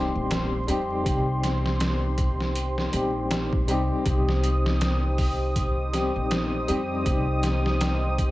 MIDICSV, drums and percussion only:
0, 0, Header, 1, 2, 480
1, 0, Start_track
1, 0, Key_signature, -3, "minor"
1, 0, Tempo, 750000
1, 678, Time_signature, 4, 2, 24, 8
1, 5319, End_track
2, 0, Start_track
2, 0, Title_t, "Drums"
2, 197, Note_on_c, 9, 42, 82
2, 200, Note_on_c, 9, 38, 113
2, 261, Note_off_c, 9, 42, 0
2, 264, Note_off_c, 9, 38, 0
2, 437, Note_on_c, 9, 42, 66
2, 501, Note_off_c, 9, 42, 0
2, 677, Note_on_c, 9, 36, 100
2, 678, Note_on_c, 9, 42, 81
2, 741, Note_off_c, 9, 36, 0
2, 742, Note_off_c, 9, 42, 0
2, 918, Note_on_c, 9, 42, 66
2, 921, Note_on_c, 9, 38, 52
2, 982, Note_off_c, 9, 42, 0
2, 985, Note_off_c, 9, 38, 0
2, 1060, Note_on_c, 9, 38, 45
2, 1124, Note_off_c, 9, 38, 0
2, 1155, Note_on_c, 9, 42, 84
2, 1158, Note_on_c, 9, 38, 124
2, 1219, Note_off_c, 9, 42, 0
2, 1222, Note_off_c, 9, 38, 0
2, 1394, Note_on_c, 9, 42, 63
2, 1396, Note_on_c, 9, 36, 94
2, 1458, Note_off_c, 9, 42, 0
2, 1460, Note_off_c, 9, 36, 0
2, 1539, Note_on_c, 9, 38, 40
2, 1603, Note_off_c, 9, 38, 0
2, 1635, Note_on_c, 9, 42, 93
2, 1699, Note_off_c, 9, 42, 0
2, 1778, Note_on_c, 9, 38, 41
2, 1842, Note_off_c, 9, 38, 0
2, 1874, Note_on_c, 9, 42, 70
2, 1938, Note_off_c, 9, 42, 0
2, 2116, Note_on_c, 9, 42, 82
2, 2120, Note_on_c, 9, 38, 111
2, 2180, Note_off_c, 9, 42, 0
2, 2184, Note_off_c, 9, 38, 0
2, 2257, Note_on_c, 9, 36, 92
2, 2321, Note_off_c, 9, 36, 0
2, 2357, Note_on_c, 9, 42, 67
2, 2421, Note_off_c, 9, 42, 0
2, 2596, Note_on_c, 9, 42, 79
2, 2597, Note_on_c, 9, 36, 99
2, 2660, Note_off_c, 9, 42, 0
2, 2661, Note_off_c, 9, 36, 0
2, 2743, Note_on_c, 9, 38, 46
2, 2807, Note_off_c, 9, 38, 0
2, 2838, Note_on_c, 9, 42, 70
2, 2902, Note_off_c, 9, 42, 0
2, 2983, Note_on_c, 9, 38, 57
2, 3047, Note_off_c, 9, 38, 0
2, 3078, Note_on_c, 9, 42, 90
2, 3081, Note_on_c, 9, 38, 114
2, 3142, Note_off_c, 9, 42, 0
2, 3145, Note_off_c, 9, 38, 0
2, 3317, Note_on_c, 9, 36, 90
2, 3317, Note_on_c, 9, 46, 80
2, 3381, Note_off_c, 9, 36, 0
2, 3381, Note_off_c, 9, 46, 0
2, 3558, Note_on_c, 9, 36, 106
2, 3558, Note_on_c, 9, 42, 89
2, 3622, Note_off_c, 9, 36, 0
2, 3622, Note_off_c, 9, 42, 0
2, 3798, Note_on_c, 9, 42, 66
2, 3802, Note_on_c, 9, 38, 35
2, 3862, Note_off_c, 9, 42, 0
2, 3866, Note_off_c, 9, 38, 0
2, 4037, Note_on_c, 9, 42, 84
2, 4040, Note_on_c, 9, 38, 109
2, 4101, Note_off_c, 9, 42, 0
2, 4104, Note_off_c, 9, 38, 0
2, 4277, Note_on_c, 9, 42, 66
2, 4341, Note_off_c, 9, 42, 0
2, 4518, Note_on_c, 9, 36, 101
2, 4518, Note_on_c, 9, 42, 80
2, 4582, Note_off_c, 9, 36, 0
2, 4582, Note_off_c, 9, 42, 0
2, 4756, Note_on_c, 9, 42, 71
2, 4759, Note_on_c, 9, 38, 54
2, 4820, Note_off_c, 9, 42, 0
2, 4823, Note_off_c, 9, 38, 0
2, 4902, Note_on_c, 9, 38, 48
2, 4966, Note_off_c, 9, 38, 0
2, 4996, Note_on_c, 9, 42, 89
2, 5000, Note_on_c, 9, 38, 119
2, 5060, Note_off_c, 9, 42, 0
2, 5064, Note_off_c, 9, 38, 0
2, 5237, Note_on_c, 9, 36, 93
2, 5238, Note_on_c, 9, 42, 69
2, 5301, Note_off_c, 9, 36, 0
2, 5302, Note_off_c, 9, 42, 0
2, 5319, End_track
0, 0, End_of_file